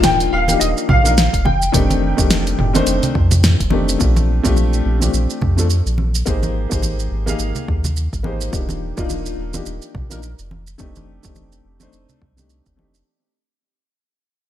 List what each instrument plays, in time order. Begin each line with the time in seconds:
Already playing: sub bass D#1, grand piano F3 A#3 D4 D#4 F4
0.03 grand piano G5, snare, mid tom, open hi-hat, high conga, shaker
0.20 open hi-hat, shaker
0.33 sub bass D#1, grand piano F5
0.47 grand piano F3 A#3 D4 D#4 G4, open hi-hat, high conga, shaker
0.60 sub bass D#1, grand piano D#5, open hi-hat, shaker
0.78 shaker
0.89 sub bass A#1, grand piano F5, kick, mid tom, low conga
1.03 grand piano F3 A#3 D4 D#4 A#4, open hi-hat, high conga, shaker
1.18 snare, open hi-hat, shaker
1.33 sub bass F1, kick, open hi-hat, shaker
1.45 grand piano G5, high conga, low conga
1.62 shaker
1.72 sub bass F1, grand piano D#3 A3 C4 D4 G4, kick, mid tom, open hi-hat, shaker
1.90 open hi-hat, high conga, shaker
2.17 sub bass F1, grand piano D#3 A3 C4 D4 G4, kick, shaker
2.31 snare, open hi-hat, high conga, shaker
2.47 open hi-hat, shaker
2.59 sub bass F1, mid tom
2.73 grand piano D#3 A3 C4 D4 C5, open hi-hat, high conga, shaker
2.87 sub bass F1, open hi-hat, shaker
3.03 open hi-hat, low conga, shaker
3.15 sub bass F2, kick
3.31 open hi-hat, high conga, low conga, shaker
3.44 snare, mid tom, open hi-hat, shaker
3.60 sub bass F1, kick, open hi-hat, shaker
3.70 grand piano D#3 A3 C4 D4 G4, high conga
3.89 open hi-hat, shaker
3.99 sub bass A#1, grand piano A3 C4 D4 F4 G4, kick, shaker
4.17 high conga, shaker
4.43 sub bass A#1, grand piano A3 C4 D4 F4 G4, kick, shaker
4.57 high conga, shaker
4.74 shaker
4.86 sub bass A#1
5.00 grand piano A3 C4 D4 F4 G4, high conga, shaker
5.14 sub bass A#1, shaker
5.30 shaker
5.42 sub bass F2, kick, low conga
5.57 grand piano A3 C4 D4 F4 A4, high conga, shaker
5.70 shaker
5.86 sub bass A#1, shaker
5.98 high conga
6.15 shaker
6.26 sub bass G#1, grand piano A#3 D#4 G4 G#4 C5, kick, shaker
6.43 high conga, shaker
6.69 sub bass G#1, grand piano A#3 D#4 G4 G#4 C5, kick, shaker
6.82 high conga, shaker
7.00 shaker
7.11 sub bass G#1
7.26 grand piano A#3 D#4 G4 G#4 F5, high conga, shaker
7.39 sub bass G#1, shaker
7.55 low conga, shaker
7.68 sub bass D#2, kick
7.84 high conga, low conga, shaker
7.97 shaker
8.13 sub bass G#1, kick, shaker
8.23 grand piano A#3 D#4 G4 G#4 C5, high conga
8.41 shaker
8.52 sub bass D#1, grand piano F3 A#3 D4 D#4 G4, kick, shaker
8.69 high conga, shaker
8.97 sub bass D#1, grand piano F3 A#3 D4 D#4 F4, kick, shaker
9.10 high conga, shaker
9.26 shaker
9.37 sub bass D#1
9.53 grand piano F3 A#3 D4 D#4 G4, high conga, shaker
9.66 sub bass D#1, shaker
9.82 shaker
9.95 sub bass A#1, kick, low conga
10.10 grand piano F3 A#3 D4 D#4 A#4, high conga, shaker
10.23 shaker
10.39 sub bass F1, shaker
10.51 high conga
10.67 shaker
10.78 sub bass F1, grand piano A3 C4 D4 D#4 G4, kick, shaker
10.96 high conga, shaker
11.23 sub bass F1, grand piano A3 C4 D4 D#4 G4, kick, shaker
11.35 high conga, shaker
11.52 shaker
11.65 sub bass F1
11.80 grand piano A3 C4 D4 D#4 C5, high conga, shaker
11.93 sub bass F1, shaker
12.09 low conga, shaker
12.22 sub bass C2, kick
12.37 grand piano A3 C4 D4 D#4 G4, high conga, low conga, shaker
12.50 shaker
12.66 sub bass F1, kick, shaker
12.76 grand piano A3 C4 D4 D#4 G4, high conga
12.94 shaker